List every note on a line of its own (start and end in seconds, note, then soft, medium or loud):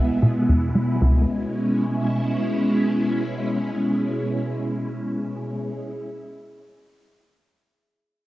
0.00 0.11 C#2 medium
0.00 1.00 B2 medium
0.00 1.01 G#3 medium
0.00 1.01 B3 medium
0.00 1.01 E4 medium
0.22 0.37 B2 medium
0.49 0.71 E2 medium
0.75 0.90 G#3 medium
1.01 1.26 C#2 medium
1.01 5.78 B2 medium
1.09 5.85 G#3 medium
1.17 5.93 C#4 medium
1.25 5.98 E4 medium